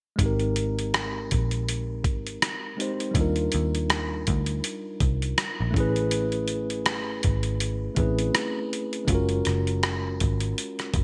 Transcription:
0.16 G#1 G#3 C4, kick, closed hi-hat
0.21 D#4 G4
0.26 A#4
0.40 closed hi-hat
0.56 closed hi-hat
0.79 closed hi-hat
0.94 cross-stick, closed hi-hat
1.31 A#1, kick, closed hi-hat
1.51 closed hi-hat
1.69 closed hi-hat
2.04 G#1, kick, closed hi-hat
2.27 closed hi-hat
2.42 cross-stick, closed hi-hat
2.77 G#3 C4 D#4 G4, closed hi-hat
2.82 C5
3.00 closed hi-hat
3.11 G3 D4, kick, closed hi-hat
3.16 D#2 D#4 F4
3.21 A#4
3.36 closed hi-hat
3.52 D#2, closed hi-hat
3.75 closed hi-hat
3.90 cross-stick, closed hi-hat
4.27 D2, kick, closed hi-hat
4.46 closed hi-hat
4.64 closed hi-hat
5.00 C2, kick, closed hi-hat
5.22 closed hi-hat
5.38 cross-stick, closed hi-hat
5.61 A#1
5.71 A3 C#4, kick
5.75 A1 E4 G#4, closed hi-hat
5.80 B4
5.96 closed hi-hat
6.11 closed hi-hat
6.32 closed hi-hat
6.48 closed hi-hat
6.70 closed hi-hat
6.86 cross-stick, closed hi-hat
7.23 G#1, kick, closed hi-hat
7.43 closed hi-hat
7.60 closed hi-hat
7.95 A1 A3 C4 E4 G#4, kick, closed hi-hat
8.00 C#4 B4
8.19 closed hi-hat
8.35 cross-stick, closed hi-hat
8.73 closed hi-hat
8.93 closed hi-hat
9.05 G#3 C#4, kick, closed hi-hat
9.09 F#1 F4 F#4
9.15 A#4
9.29 closed hi-hat
9.45 F#1, cross-stick, closed hi-hat
9.67 closed hi-hat
9.83 cross-stick, closed hi-hat
10.20 G#1, kick, closed hi-hat
10.40 closed hi-hat
10.58 closed hi-hat
10.79 cross-stick, closed hi-hat
10.94 F#1, kick, closed hi-hat

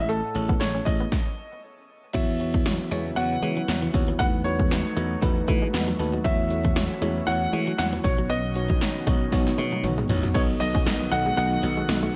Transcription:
Already playing: A1 A2 A3 E4 G#4 C#5
0.00 E5
0.09 A3 A4, closed hi-hat
0.34 A1 A3 E4 G#4 C#5, muted clean electric guitar stroke, closed hi-hat
0.49 B3, kick
0.60 A1 A3 E4 G#4 C#5, snare, closed hi-hat
0.75 C#4
0.85 A1 A3 E4 G#4 C#5 D#5, muted clean electric guitar stroke, kick, closed hi-hat
1.00 B3
1.12 kick, snare
2.13 E2 C#3 E3 F#3 B3 E4 F#4 C#5 E5, kick, closed hi-hat, crash
2.40 B3 E4 F#4 C#5, muted clean electric guitar stroke, closed hi-hat
2.54 E3, kick
2.65 B3 E4 F#4 C#5, snare, closed hi-hat
2.91 E2 G#3 B3 E4 F#4 C#5, closed hi-hat
3.16 E2 B3 E4 F#4 C#5 F#5, muted clean electric guitar stroke, closed hi-hat
3.42 E3 G#3 B3 E4 F#4 C#5, closed hi-hat
3.57 F#3
3.68 E2 B3 E4 F#4 C#5, snare, closed hi-hat
3.82 E3
3.93 D#2 B3 E4 F#4 C#5, muted clean electric guitar stroke, kick, open hi-hat
4.08 E3
4.19 E2 E3 F#3 A3 B3 D#4 F#4 B4 F#5, kick, closed hi-hat
4.44 A3 D#4 F#4 B4 C#5, muted clean electric guitar stroke, closed hi-hat
4.59 G#3, kick
4.70 A3 D#4 F#4 B4, snare, closed hi-hat
4.96 E2 A3 D#4 F#4 B4, closed hi-hat
5.21 E2 A3 D#4 F#4 B4, muted clean electric guitar stroke, kick, closed hi-hat
5.47 E3 A3 D#4 F#4 B4, kick, closed hi-hat
5.62 G#3
5.73 E2 A3 D#4 F#4 B4 F#5, snare, closed hi-hat
5.88 F#3
5.99 D#2 A3 D#4 F#4 B4 A5, muted clean electric guitar stroke, open hi-hat
6.14 F#3
6.24 E2 E3 F#3 A3 C#4 E4 F#4 C#5 E5, kick, closed hi-hat
6.50 A3 E4 F#4 C#5, muted clean electric guitar stroke, closed hi-hat
6.65 E3, kick
6.76 A3 E4 F#4 C#5, snare, closed hi-hat
7.01 E2 G#3 A3 E4 F#4 C#5, closed hi-hat
7.27 E2 A3 E4 F#4 C#5 F#5, muted clean electric guitar stroke, closed hi-hat
7.53 E3 G#3 A3 E4 F#4 C#5, closed hi-hat
7.67 F#3
7.78 E2 A3 E4 F#4 C#5 F#5, snare, closed hi-hat
7.93 E3
8.04 B1 B2 D#3 B3 C#4 D#4 F#4 C#5, muted clean electric guitar stroke, kick, open hi-hat
8.18 F#3
8.29 B3 D#5, closed hi-hat
8.55 B3 D#4 F#4 C#5, muted clean electric guitar stroke, closed hi-hat
8.70 F#3, kick
8.81 B3 D#4 F#4 C#5, snare, closed hi-hat, tambourine
9.06 B1 G#3 B3 D#4 F#4 C#5, kick, closed hi-hat
9.32 B1 B3 D#4 F#4 C#5, muted clean electric guitar stroke, kick, snare, closed hi-hat
9.47 snare
9.58 B2 G#3 B3 D#4 F#4 C#5, closed hi-hat, high tom
9.72 F#3, high tom
9.83 B1 B3 D#4 F#4 C#5, closed hi-hat, mid tom
9.98 G#3, mid tom
10.09 A1 B3 D#4 F#4 C#5, muted clean electric guitar stroke, floor tom, open hi-hat
10.23 F#3, floor tom
10.34 B1 B2 D#3 F#3 A3 B3 D#4 F#4 A4 C#5 D#5, kick, closed hi-hat, crash
10.60 B1 B3 D#4 F#4 A4 D#5, muted clean electric guitar stroke, closed hi-hat
10.75 C#4, kick
10.85 B1 B3 D#4 F#4 A4 D#5, snare, closed hi-hat, tambourine
11.00 muted clean electric guitar stroke
11.11 B1 B3 D#4 F#4 A4 D#5 F#5, closed hi-hat
11.26 G#3
11.37 B1 B3 D#4 F#4 A4 D#5 F#5, muted clean electric guitar stroke, closed hi-hat
11.62 B1 F#3 B3 D#4 F#4 A4 D#5, closed hi-hat
11.77 G#3
11.88 B1 B3 D#4 F#4 A4 D#5, snare, closed hi-hat, tambourine
12.03 A3

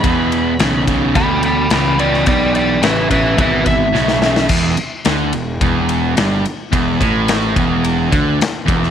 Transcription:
Already playing: B5
0.03 E2 B2, kick, ride
0.32 ride
0.59 B1 E2 C#3, snare, ride
0.87 E2 C#3, kick, ride
1.14 D2 E2 B2 G5 B5, kick, ride
1.43 G5 B5, ride
1.70 C#2 E2 C#3 G5 B5, snare, ride
1.99 E2 C#3 D5 G5, ride
2.14 snare
2.26 B1 E2 B2 D5 G5, kick, ride
2.55 D5 G5, ride
2.82 A1 E2 C#3 B4 E5, snare, ride
3.10 E2 C#3 B4 E5, kick, ride
3.37 G#1 E2 B2 B4, kick, ride
3.42 E5
3.66 E5, kick, ride
3.93 B1 E2 C#3, snare
4.08 snare
4.21 E2 C#3, snare
4.36 snare
4.48 E1 E2, kick, crash
4.77 muted overdriven electric guitar stroke, muted picked electric bass stroke, ride
5.05 D2 D3, snare, ride
5.33 E1 E2, ride
5.61 E1 E2, kick, ride
5.89 ride
6.16 G1 G2, snare, ride
6.45 ride
6.71 E1 E2, kick, ride
6.99 A1 A2, kick, ride
7.28 snare, ride
7.55 E1 E2, kick, ride
7.84 ride
8.11 D2 D3, kick, ride
8.39 muted overdriven electric guitar stroke, muted picked electric bass stroke, snare, ride
8.65 E1 E2, kick, ride
8.83 snare

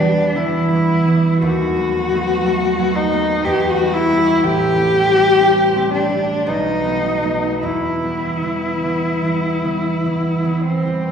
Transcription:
Already playing: E2 D4
0.01 E3 G3 B3
0.36 E3 G3 B3 E4
0.71 E3 G3
0.75 B3
1.07 E3 G3 B3
1.42 D#2 F#4
1.76 F#3 A3 B3
2.11 F#3 A3 B3
2.43 F#3 A3
2.48 B3
2.79 F#3 A3 B3
2.96 D#4
3.12 F#3 A3 B3
3.45 E2 G4
3.70 F#4
3.79 G3 B3
3.94 E4
4.11 G3 B3
4.43 A1 G4
4.76 G3 A3 C4
5.09 G3 A3 C4
5.42 G3 A3 C4
5.75 G3 A3 C4
5.94 D4
6.09 G3 A3 C4
6.47 B1 D#4
6.84 F#3 A3 B3
7.23 F#3 A3 B3
7.62 E2 E4
8.03 E3 G3 B3
8.43 E3 G3 B3
8.82 E3 G3 B3
9.24 E3 G3 B3
9.64 E3 G3 B3
10.05 E3 G3 B3
10.44 E3 G3 B3
10.65 C4
10.83 E3 G3
10.87 B3

